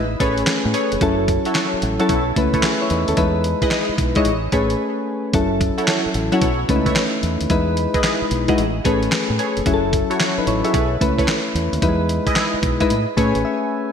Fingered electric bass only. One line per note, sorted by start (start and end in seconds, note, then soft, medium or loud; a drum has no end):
0.00 0.15 A1 loud
0.20 0.42 A1 medium
0.65 0.73 A2 loud
0.92 1.00 F1 medium
1.01 1.37 F#1 loud
1.74 muted fingered electric bass stroke soft
1.83 1.97 A1 loud
2.09 2.31 B1 loud
2.37 2.58 C#2 medium
2.91 3.05 E2 medium
3.08 3.16 D#2 medium
3.18 3.53 E2 loud
3.89 muted fingered electric bass stroke soft
3.98 4.12 B1 medium
4.26 4.47 A1 medium
4.53 4.74 A1 medium
5.34 5.69 F#1 loud
6.06 muted fingered electric bass stroke soft
6.15 6.29 A1 medium
6.42 6.63 B1 loud
6.69 6.91 C#2 medium
7.23 7.37 E2 medium
7.41 7.48 D#2 medium
7.50 7.86 E2 loud
8.22 muted fingered electric bass stroke soft
8.31 8.45 B1 medium
8.58 8.80 A1 loud
8.85 9.07 A1 medium
9.30 9.37 A2 loud
9.57 9.64 F1 medium
9.66 10.02 F#1 loud
10.38 muted fingered electric bass stroke medium
10.47 10.61 A1 medium
10.74 10.96 B1 medium
11.01 11.23 C#2 medium
11.55 11.69 E2 medium
11.73 11.80 D#2 medium
11.82 12.18 E2 loud
12.54 muted fingered electric bass stroke soft
12.63 12.77 B1 medium
12.91 13.05 A2 loud
13.18 13.32 A2 medium
13.35 13.43 A1 medium